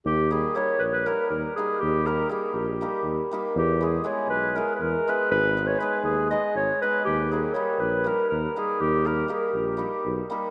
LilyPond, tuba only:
\new Staff \with { instrumentName = "Tuba" } { \clef bass \time 7/8 \tempo 4 = 120 ees,4. bes,,4 ees,8 r8 | ees,4. bes,,4 ees,8 r8 | e,4. b,,4 e,8 r8 | aes,,4. ees,4 aes,,8 r8 |
ees,4. bes,,4 ees,8 r8 | ees,4. bes,,4 ces,8 r8 | }